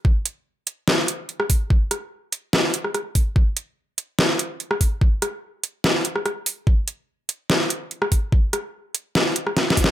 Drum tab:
HH |------x-----------x-----------x-----x-----o-----|------x-----------x-----------x-----x-----o-----|------x-----------x-----------x-----x-----o-----|------x-----------x-----------x-----x-----o-----|
SD |------------------------o--------------r--------|------r-----------------o--------r--r-----------|------------------------o--------------r--------|------r-----------------o--------r--r-----------|
BD |o-----------------------------------------o-----|o-----------------------------------------o-----|o-----------------------------------------o-----|o-----------------------------------------------|

HH |------x-----------x-----------x-----x-----o-----|------x-----------x-----------x-----x-----o-----|
SD |------------------------o--------------r--------|------r-----------------o--------r--o---o---o---|
BD |o-----------------------------------------o-----|o-----------------------------------------o-----|